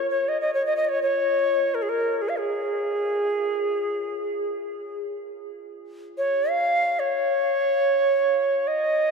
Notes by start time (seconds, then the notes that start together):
Already playing: F4
0.10 C#5
0.28 D#5
0.41 D#5
0.54 C#5
0.66 D#5
0.77 D#5
0.85 C#5 D#5
1.03 C#5
1.75 A#4
1.82 G#4
1.89 A#4
2.22 G#4
2.29 F5
2.37 G#4
6.18 C#5
6.50 F5
6.99 C#5
8.67 D#5